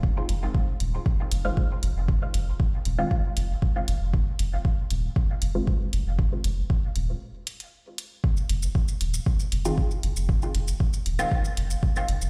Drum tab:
HH |--x---x---x---x-|--x---x---x---x-|--x---x---x---x-|--x---x---xx--x-|
SH |----------------|----------------|----------------|----------------|
BD |o---o---o---o---|o---o---o---o---|o---o---o---o---|o---o-----------|

HH |--x---x---x---x-|--x---x---x---x-|
SH |-x-x-x-x-x-x-x-x|-x-x-x-x-x-x-x-x|
BD |o---o---o---o---|o---o---o---o---|